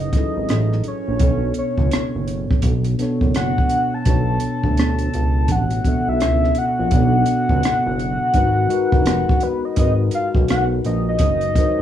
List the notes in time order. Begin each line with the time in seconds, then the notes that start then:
Already playing: F#3 C#4 E4 G#4 B4 D#5
0.12 F#3 C#4 E4 G#4, kick, closed hi-hat
0.16 A4, cross-stick
0.37 G#1
0.49 A1, cross-stick, closed hi-hat
0.73 cross-stick
0.84 closed hi-hat
0.88 C#5
1.08 A#1
1.19 B1 B2 B3 C#4 A4, kick, closed hi-hat
1.24 C#5
1.28 D4
1.54 closed hi-hat
1.58 C#5
1.78 C#2, kick
1.91 cross-stick, closed hi-hat
2.15 F#1
2.28 closed hi-hat
2.51 kick
2.62 B1, kick, closed hi-hat
2.84 closed hi-hat
2.97 B2 B3 D4 A4, closed hi-hat
3.02 C#5, cross-stick
3.21 F#1, kick
3.34 F#5, cross-stick, closed hi-hat
3.58 kick
3.69 closed hi-hat
3.94 A5
4.05 B1 B2 B3 D4 A4, kick, closed hi-hat
4.10 C#5
4.40 closed hi-hat
4.64 D2, kick
4.77 cross-stick, closed hi-hat
4.99 closed hi-hat
5.14 C#2, closed hi-hat
5.48 A1 F#5, kick, closed hi-hat
5.70 closed hi-hat
5.84 B2 B3 D4 A4, kick, closed hi-hat
5.88 E5
6.08 B1 E5
6.20 C#2, cross-stick, closed hi-hat
6.44 cross-stick
6.55 F#5, closed hi-hat
6.79 A#1
6.90 B1 B2 B3 D4 A4, kick, closed hi-hat
6.95 D5
7.26 closed hi-hat
7.49 C#2, kick
7.63 cross-stick, closed hi-hat
7.86 F#1
7.99 closed hi-hat
8.33 G#1 G#3 D#4 F#4 A#4, kick, closed hi-hat
8.37 B4
8.68 G#3 D#4 F#4 A#4, closed hi-hat
8.73 B4
8.92 F1, kick
9.06 cross-stick, closed hi-hat
9.29 kick
9.40 B4, closed hi-hat
9.65 D#5
9.76 G#1 G#3 D#4 F#4 A#4 D#5, kick, closed hi-hat
9.81 B4
10.11 F5, closed hi-hat
10.35 B1, kick
10.48 F#5, cross-stick, closed hi-hat
10.84 A#1 D#5, closed hi-hat
11.08 D#5
11.19 F#1, kick, closed hi-hat
11.41 closed hi-hat
11.55 G#3 D#4 F#4 A#4, kick, closed hi-hat
11.59 C5, cross-stick
11.66 C#5
11.79 G#1